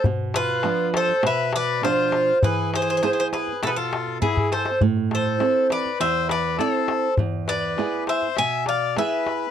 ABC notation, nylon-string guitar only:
X:1
M:4/4
L:1/8
Q:1/4=101
K:Ephr
V:1 name="Nylon-string guitar"
B,,2 [F,B,D]2 B,,2 [B,,F,D]2 | E,2 [B,E^G]2 B,,2 [B,EG]2 | A,,2 [CEA]2 E,,2 [CEA]2 | E,,2 [B,E^G]2 B,,2 [B,EG]2 |]